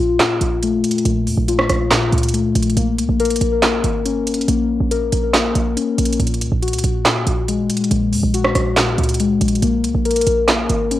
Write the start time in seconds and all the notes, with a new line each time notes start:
Already playing: A#2 F4
0.00 A#1
0.20 A#2, snare, clap, closed hi-hat
0.41 A#1, closed hi-hat
0.63 A3, closed hi-hat
0.73 A1
0.84 closed hi-hat
0.91 closed hi-hat
0.98 closed hi-hat
1.05 A#1 A#2, closed hi-hat
1.27 F2, open hi-hat
1.37 A#1
1.48 F4, closed hi-hat
1.59 cross-stick
1.70 A#1, cross-stick, closed hi-hat
1.91 A#2, snare, clap, closed hi-hat
2.12 C#2, closed hi-hat
2.18 closed hi-hat
2.23 closed hi-hat
2.29 closed hi-hat
2.34 A3, closed hi-hat
2.55 A#1, closed hi-hat
2.63 closed hi-hat
2.70 closed hi-hat
2.77 A#1 A#3, closed hi-hat
2.98 C#2, closed hi-hat
3.09 A#1
3.20 A#4, closed hi-hat
3.25 closed hi-hat
3.30 closed hi-hat
3.36 closed hi-hat
3.41 A#1, closed hi-hat
3.62 A#3, snare, clap, closed hi-hat
3.84 G#1, closed hi-hat
4.05 C#4, closed hi-hat
4.27 closed hi-hat
4.34 closed hi-hat
4.41 closed hi-hat
4.48 A#1 A#3, closed hi-hat
4.80 A#1
4.91 A#4, closed hi-hat
5.12 A#1, closed hi-hat
5.34 A#3, snare, clap, closed hi-hat
5.55 A#1, closed hi-hat
5.77 C#4, closed hi-hat
5.98 A#1, closed hi-hat
6.05 closed hi-hat
6.13 closed hi-hat
6.20 A#1 A#2, closed hi-hat
6.27 closed hi-hat
6.34 closed hi-hat
6.41 C#2, closed hi-hat
6.52 A#1
6.62 F#4, closed hi-hat
6.68 closed hi-hat
6.73 C#2, closed hi-hat
6.79 closed hi-hat
6.84 A#1, closed hi-hat
7.05 A#2, snare, clap, closed hi-hat
7.27 A#1, closed hi-hat
7.48 G#3, closed hi-hat
7.59 G#1
7.70 closed hi-hat
7.77 closed hi-hat
7.84 closed hi-hat
7.91 A#1 A#2, closed hi-hat
8.12 F2, open hi-hat
8.23 A#1
8.34 F#4, closed hi-hat
8.45 cross-stick
8.55 A#1, cross-stick, closed hi-hat
8.77 A#2, snare, clap, closed hi-hat
8.98 C#2, closed hi-hat
9.04 closed hi-hat
9.09 closed hi-hat
9.14 closed hi-hat
9.20 G#3, closed hi-hat
9.41 A#1, closed hi-hat
9.48 closed hi-hat
9.55 closed hi-hat
9.62 A#1 A#3, closed hi-hat
9.84 C#2, closed hi-hat
9.95 A#1
10.05 A#4, closed hi-hat
10.11 closed hi-hat
10.16 closed hi-hat
10.21 closed hi-hat
10.27 A#1, closed hi-hat
10.48 A#3, snare, clap, closed hi-hat
10.69 G#1, closed hi-hat
10.91 C#4, closed hi-hat